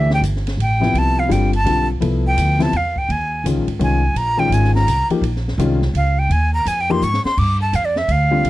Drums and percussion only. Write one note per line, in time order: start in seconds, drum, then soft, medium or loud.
0.10 snare medium
0.23 hi-hat pedal medium
0.23 ride medium
0.36 snare soft
0.47 snare soft
0.47 ride medium
0.60 ride medium
0.82 snare soft
0.95 ride medium
1.31 hi-hat pedal medium
1.31 ride medium
1.53 ride medium
1.66 ride medium
2.02 ride medium
2.38 hi-hat pedal medium
2.38 ride medium
2.60 snare medium
2.60 ride medium
2.73 ride medium
2.96 kick medium
3.10 ride medium
3.46 hi-hat pedal medium
3.46 ride medium
3.68 ride medium
3.81 ride medium
4.16 ride medium
4.52 hi-hat pedal medium
4.52 ride medium
4.65 snare soft
4.76 snare soft
4.88 hi-hat pedal medium
4.88 ride medium
5.10 ride soft
5.23 ride medium
5.36 snare soft
5.48 snare soft
5.59 hi-hat pedal medium
5.59 ride medium
5.82 snare medium
5.95 ride medium
6.31 ride medium
6.66 hi-hat pedal medium
6.66 ride medium
7.02 hi-hat pedal medium
7.13 snare medium
7.25 snare medium
7.38 kick medium
7.38 crash medium
7.73 hi-hat pedal medium
7.73 ride medium
7.96 snare medium
8.09 ride medium
8.45 ride medium